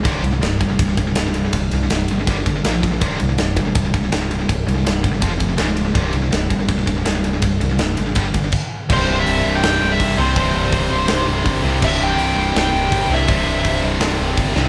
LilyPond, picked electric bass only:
\new Staff \with { instrumentName = "Picked electric bass" } { \clef bass \time 4/4 \key c \major \tempo 4 = 163 c,,8 c,8 c,,8 g,,8 c,,8 c,,8 c,,4 | c,,8 c,8 c,,8 g,,8 g,,8 aes,,8 bes,,4 | c,,8 c,8 c,,8 g,,8 c,,8 c,,8 c,,4 | c,,8 c,8 c,,8 g,,8 f,,8 f,,8 des,,4 |
c,,8 c,8 c,,8 g,,8 c,,8 c,,8 c,,4 | c,,8 c,8 c,,8 aes,,8 g,,8 g,,8 r4 | c,,8 c,,8 c,,8 c,,8 c,,8 c,,8 g,,8 c,8 | c,,8 c,,8 c,,8 c,,8 c,,8 c,,8 g,,8 c,8 |
c,,8 c,,8 c,,8 c,,8 c,,8 c,,8 g,,8 c,8 | c,,8 c,,8 c,,8 c,,8 c,,8 c,,8 g,,8 c,8 | }